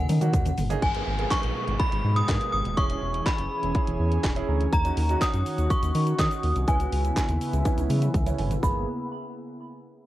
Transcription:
Already playing: synth bell F#5
0.09 analog synth bass D#3, synth arpeggio sound C#4, mid tom, open hi-hat, shaker
0.21 grand piano A#3 C#4 D#4 F#4, synth arpeggio sound F#4, closed hi-hat, mid tom, shaker
0.33 analog synth bass D#2, synth arpeggio sound F#3, kick, closed hi-hat, floor tom, shaker
0.45 synth arpeggio sound C#4, closed hi-hat, floor tom, shaker
0.58 analog synth bass G1, synth arpeggio sound A#3, floor tom, open hi-hat, shaker
0.70 grand piano A#3 C#4 D#4 G#4, closed hi-hat, floor tom, shaker
0.82 analog synth bass G#1, analog synth pad B2 G#3, synth bell G#5, kick, closed hi-hat, downlifter
0.94 grand piano A#3 B3 G#4, closed hi-hat
1.07 analog synth bass G#1
1.19 grand piano A#3 B3 G#4, closed hi-hat
1.31 synth bell C#6, kick, snare, clap, closed hi-hat
1.43 analog synth bass A#1, closed hi-hat
1.68 analog synth bass G#1, closed hi-hat
1.79 synth bell B5, kick, closed hi-hat
1.92 analog synth bass G#1, closed hi-hat
2.04 analog synth bass G#2
2.16 synth bell D#6, closed hi-hat
2.28 analog synth bass G#2, grand piano A#3 B3 G#4, kick, snare, clap, closed hi-hat
2.41 closed hi-hat
2.53 analog synth bass G#1, synth bell D#6
2.65 analog synth bass D#1, closed hi-hat
2.77 analog synth bass E1, analog synth pad E3 C#4 G#4, grand piano C#4 E4 G#4, synth bell C#6, kick, closed hi-hat
2.90 grand piano C#4 E4 G#4, closed hi-hat
3.02 analog synth bass E1
3.14 closed hi-hat
3.26 synth bell B5, kick, snare, clap, closed hi-hat
3.38 analog synth bass F#1, closed hi-hat
3.63 analog synth bass E1, closed hi-hat
3.75 grand piano C#4 E4 G#4, kick, closed hi-hat
3.87 analog synth bass E1, closed hi-hat
3.99 analog synth bass E2
4.12 closed hi-hat
4.24 analog synth bass E1, grand piano G#5, kick, snare, clap, closed hi-hat
4.36 grand piano C#4 E4 G#4, closed hi-hat
4.48 analog synth bass D2, grand piano A#5
4.61 closed hi-hat
4.73 analog synth bass D#2, analog synth pad D#3 F#4, synth bell A#5, kick, closed hi-hat, shaker
4.85 grand piano C#4 D#4 F#4, closed hi-hat, shaker
4.97 analog synth bass D#2, open hi-hat
5.09 grand piano C#4 D#4 F#4, closed hi-hat, shaker
5.21 synth bell D#6, kick, snare, clap, closed hi-hat, shaker
5.34 analog synth bass F#2, closed hi-hat, shaker
5.46 open hi-hat, shaker
5.58 analog synth bass D#2, closed hi-hat, shaker
5.70 synth bell C#6, kick, closed hi-hat, shaker
5.83 analog synth bass D#2, closed hi-hat, shaker
5.95 analog synth bass D#3, open hi-hat, shaker
6.07 closed hi-hat, shaker
6.19 analog synth bass D#3, grand piano C#4 D#4 F#4, synth bell D#6, kick, snare, clap, closed hi-hat, shaker
6.31 closed hi-hat, shaker
6.43 analog synth bass D#2, open hi-hat
6.56 analog synth bass C2, closed hi-hat, shaker
6.68 analog synth bass C#2, analog synth pad C#3 B3 E4, grand piano B3 C#4 E4, synth bell G#5, kick, closed hi-hat, shaker
6.80 grand piano B3 C#4 F#4, closed hi-hat, shaker
6.92 analog synth bass C#2, open hi-hat
7.05 closed hi-hat, shaker
7.16 kick, snare, clap, closed hi-hat, shaker
7.29 analog synth bass D#2, closed hi-hat, shaker
7.41 open hi-hat, shaker
7.53 analog synth bass C#2, closed hi-hat, shaker
7.65 grand piano B3 C#4 E4, kick, closed hi-hat, high tom, shaker
7.78 analog synth bass C#2, closed hi-hat, high tom, shaker
7.89 analog synth bass C#3, open hi-hat, mid tom, shaker
8.02 closed hi-hat, mid tom, shaker
8.14 analog synth bass C#2, grand piano E5, kick, closed hi-hat, mid tom, shaker
8.26 grand piano B3 C#4 E4, closed hi-hat, mid tom, shaker
8.38 analog synth bass G1, grand piano G#5, floor tom, open hi-hat
8.51 closed hi-hat, floor tom, shaker
8.63 analog synth bass G#1, analog synth pad A#3 B3 G#4, grand piano A#3 B3 G#4, synth bell B5, kick, shaker

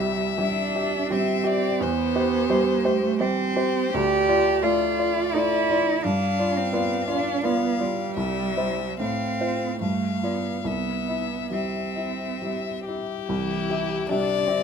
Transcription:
Already playing: grand piano C2, cello G3, violin E5
0.00 grand piano G4 E5
0.38 grand piano G3 G4 E5, cello D4
0.75 grand piano G4 E5
1.10 grand piano G3 G4 E5, cello C4, violin E5
1.44 grand piano G4 E5, violin D5
1.81 grand piano E2, cello B3, violin C5
2.16 grand piano G4 C5
2.49 grand piano G3 G4 C5
2.85 cello A3, grand piano G4 C5
3.19 grand piano G3 G4 C5, cello C4, violin C5
3.56 grand piano G4 C5
3.93 grand piano D2, cello G4, violin D5
4.29 grand piano F4 D5
4.62 grand piano A3 F4 D5, cello F4, violin D5
4.99 grand piano F4 D5
5.34 grand piano A3 F4 D5, cello E4
5.70 grand piano F4 D5
6.04 grand piano G2, cello D4, violin F5
6.39 grand piano F4 D5
6.57 cello C4
6.73 grand piano B3 F4 D5
7.08 cello D4, grand piano F4 D5
7.44 grand piano B3 F4 D5, cello B3, violin F5
7.79 cello G3, grand piano F4 D5
8.17 grand piano C2, violin E5
8.57 grand piano E4 C5
9.00 grand piano A2, cello C4, violin F5
9.41 grand piano F4 C5
9.81 grand piano G2, cello A3, violin F5
10.23 cello B3, grand piano F4 D5
10.64 grand piano C2, cello B3, violin E5
11.09 grand piano E4 E5
11.51 grand piano G3 E4 E5, cello C4, violin E5
11.96 grand piano E4 E5
12.42 grand piano G3 E4 E5
12.85 grand piano E4 E5, violin G4
13.29 grand piano C2, cello E3, violin E4
13.70 grand piano G4 E5
14.09 cello C3, grand piano G3 G4 E5, violin D4 D5
14.47 cello D3, violin C4, grand piano G4 E5

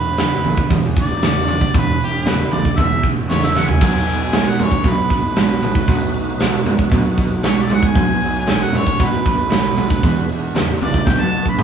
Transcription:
Already playing: fingered electric bass E1, overdriven electric guitar E2 B2, harmonica B4
0.18 overdriven electric guitar E2 C#3, snare, open hi-hat
0.44 fingered electric bass B1, overdriven electric guitar E2 C#3, open hi-hat
0.57 kick
0.70 overdriven electric guitar E2 B2, fingered electric bass E2, kick, open hi-hat
0.84 fingered electric bass E2
0.97 kick, open hi-hat
1.01 harmonica D5
1.11 fingered electric bass E1
1.22 overdriven electric guitar E2 C#3, snare, open hi-hat
1.48 overdriven electric guitar E2 C#3, open hi-hat
1.61 kick
1.74 fingered electric bass E1, overdriven electric guitar E2 B2, harmonica B4, kick, open hi-hat
2.01 fingered electric bass E1, harmonica G4, open hi-hat
2.26 overdriven electric guitar E2 C#3, harmonica B4, snare, open hi-hat
2.52 fingered electric bass B1, overdriven electric guitar E2 C#3, harmonica D5, open hi-hat
2.65 kick
2.77 fingered electric bass E2, overdriven electric guitar E2 B2, harmonica E5, kick, open hi-hat
2.91 fingered electric bass E2
3.03 kick, open hi-hat
3.17 fingered electric bass E1
3.29 overdriven electric guitar E2 C#3, harmonica C#5, snare
3.42 harmonica E5, snare
3.55 overdriven electric guitar E2 C#3, harmonica F#5, snare
3.69 harmonica G#5, floor tom
3.81 fingered electric bass B1, overdriven electric guitar B2 F#3, tonewheel organ A3 D#4 F#4 B4, kick, open hi-hat, crash
4.07 fingered electric bass B1, open hi-hat
4.22 harmonica G#5
4.33 overdriven electric guitar B2 G#3, snare, open hi-hat
4.49 harmonica F#5
4.59 fingered electric bass F#2, overdriven electric guitar B2 G#3, open hi-hat
4.63 harmonica C#5
4.72 kick
4.83 fingered electric bass B2, overdriven electric guitar B2 F#3, kick, open hi-hat
4.88 harmonica B4
4.98 fingered electric bass B2
5.10 harmonica B4, kick, open hi-hat
5.23 fingered electric bass B1
5.36 overdriven electric guitar B2 G#3, snare, open hi-hat
5.62 overdriven electric guitar B2 G#3, open hi-hat
5.75 kick
5.88 fingered electric bass B1, overdriven electric guitar B2 F#3, kick, open hi-hat
6.14 fingered electric bass B1, open hi-hat
6.40 overdriven electric guitar B2 G#3, snare, open hi-hat
6.65 fingered electric bass F#2, overdriven electric guitar B2 G#3, open hi-hat
6.79 kick
6.92 fingered electric bass B2, overdriven electric guitar B2 F#3, kick, open hi-hat
7.05 fingered electric bass B2
7.18 kick, open hi-hat
7.31 fingered electric bass B1
7.43 overdriven electric guitar B2 G#3, harmonica C#5, snare, open hi-hat
7.62 harmonica D5
7.70 overdriven electric guitar B2 G#3, open hi-hat
7.75 harmonica F#5
7.83 kick
7.87 harmonica G#5
7.95 fingered electric bass B1, overdriven electric guitar B2 F#3, tonewheel organ A3 D#4 F#4 B4, kick, open hi-hat
8.21 fingered electric bass B1, open hi-hat
8.39 harmonica G#5
8.47 overdriven electric guitar B2 G#3, snare, open hi-hat
8.64 harmonica F#5
8.73 fingered electric bass F#2, overdriven electric guitar B2 G#3, open hi-hat
8.78 harmonica C#5
8.87 kick
9.00 overdriven electric guitar B2 F#3, fingered electric bass B2, harmonica B4, kick, open hi-hat
9.12 fingered electric bass B2
9.26 harmonica B4, kick, open hi-hat
9.39 fingered electric bass B1
9.50 overdriven electric guitar B2 G#3, snare, open hi-hat
9.77 overdriven electric guitar B2 G#3, open hi-hat
9.90 kick
10.02 overdriven electric guitar E2 B2, fingered electric bass E2, tonewheel organ G#3 D4 E4 B4, kick, open hi-hat
10.29 fingered electric bass E2, open hi-hat
10.55 overdriven electric guitar E2 C#3, snare, open hi-hat
10.81 fingered electric bass C#2, overdriven electric guitar E2 C#3, harmonica D5, open hi-hat
10.94 kick
11.07 fingered electric bass B1, overdriven electric guitar B2 F#3, tonewheel organ A3 D#4 F#4 B4, harmonica G5, kick, snare
11.19 fingered electric bass B2, harmonica A5, high tom
11.46 fingered electric bass B1, harmonica B5, kick
11.58 overdriven electric guitar B2 G#3, mid tom

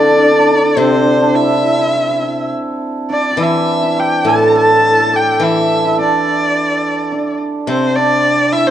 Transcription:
Already playing: guzheng D3, hammered dulcimer C4 E4 G4, erhu D5
0.01 hammered dulcimer D4
0.10 hammered dulcimer D4
0.16 hammered dulcimer D4
0.24 hammered dulcimer D4
0.31 hammered dulcimer D4
0.38 hammered dulcimer D4
0.50 hammered dulcimer D4
0.77 guzheng C3, hammered dulcimer C4, erhu C5
1.22 hammered dulcimer D4
1.35 hammered dulcimer E4, erhu E5
1.42 hammered dulcimer E4
1.50 hammered dulcimer E4
1.57 hammered dulcimer E4
1.64 hammered dulcimer E4
1.71 hammered dulcimer E4
1.79 hammered dulcimer E4
1.86 hammered dulcimer E4
1.95 hammered dulcimer E4
2.02 hammered dulcimer E4
2.10 hammered dulcimer E4
2.22 hammered dulcimer E4
3.10 hammered dulcimer D4, erhu D5
3.31 hammered dulcimer G4
3.37 guzheng E3, hammered dulcimer E4
3.42 erhu E5
3.83 hammered dulcimer E4
3.98 hammered dulcimer G4, erhu G5
4.25 guzheng A2, hammered dulcimer A4, erhu A5
4.55 hammered dulcimer A4, erhu A5
4.99 hammered dulcimer A4
5.13 hammered dulcimer G4, erhu G5
5.40 guzheng E3, hammered dulcimer E4, erhu E5
5.85 hammered dulcimer E4
5.99 hammered dulcimer D4, erhu D5
7.12 hammered dulcimer D4
7.67 guzheng C3, hammered dulcimer C4, erhu C5
7.96 hammered dulcimer D4, erhu D5
8.52 hammered dulcimer E4, erhu E5
8.67 hammered dulcimer C4, erhu C5

